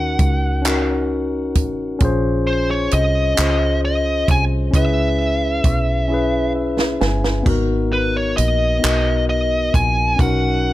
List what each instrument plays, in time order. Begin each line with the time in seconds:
Already playing: fingered electric bass D#2, tine electric piano C#4 D#4 F#4 A#4, lead electric guitar F#5
0.19 fingered electric bass C#2, kick, closed hi-hat
0.62 tine electric piano C#4 D#4, closed hi-hat
0.66 tine electric piano F#4 A#4, clap
1.55 fingered electric bass A1, kick, closed hi-hat
1.99 fingered electric bass A#1, tine electric piano C#4 F4, kick, closed hi-hat
2.03 tine electric piano G#4 C5
2.47 lead electric guitar C5
2.71 lead electric guitar C#5
2.91 fingered electric bass C2, lead electric guitar D#5, closed hi-hat
3.35 fingered electric bass C#2, tine electric piano C#4 F4 G#4, clap, closed hi-hat
3.41 tine electric piano C5
3.85 lead electric guitar D#5
4.28 fingered electric bass C2, lead electric guitar G#5, kick, closed hi-hat
4.71 fingered electric bass C#2, tine electric piano C#4 E4, kick, closed hi-hat
4.75 tine electric piano G#4 B4, lead electric guitar E5
5.64 fingered electric bass B1, kick, closed hi-hat
6.08 tine electric piano C#4 E4 G#4
6.14 tine electric piano B4
6.55 tine electric piano E5
6.79 snare
7.01 fingered electric bass G1, tine electric piano G#5, snare
7.24 snare
7.43 fingered electric bass G#1, tine electric piano B3 D#4, kick, splash
7.47 tine electric piano F#4 A#4
7.93 lead electric guitar B4
8.17 lead electric guitar C#5
8.37 fingered electric bass A#1, lead electric guitar D#5, closed hi-hat
8.79 tine electric piano B3 D#4 F#4
8.83 fingered electric bass B1, tine electric piano A#4, clap, closed hi-hat
9.29 lead electric guitar D#5
9.74 fingered electric bass A#1, lead electric guitar G#5, kick, closed hi-hat
10.16 fingered electric bass B1, tine electric piano C#4 D#4 F#4, lead electric guitar F#5, kick, closed hi-hat
10.23 tine electric piano A#4